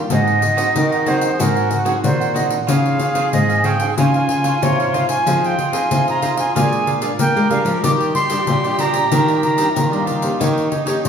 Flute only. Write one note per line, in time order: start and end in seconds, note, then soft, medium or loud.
0.12 1.10 D#5 loud
1.08 1.42 C5 medium
1.40 1.78 A#4 medium
2.04 2.34 C5 medium
2.35 2.43 D#5 medium
2.69 3.29 F5 medium
3.33 3.67 D#5 medium
3.65 3.97 G5 medium
3.98 4.64 G#5 loud
4.63 4.96 C#5 medium
4.95 5.09 F5 medium
5.09 5.47 G#5 medium
5.46 5.76 G5 medium
5.74 6.07 G#5 medium
6.09 6.38 A#5 medium
6.39 6.54 G#5 medium
6.56 6.90 G#5 medium
7.20 7.50 G5 loud
7.51 7.58 F5 medium
7.84 7.91 D6 loud
8.15 8.82 C6 loud
8.80 9.43 A#5 loud
9.44 10.04 A#5 loud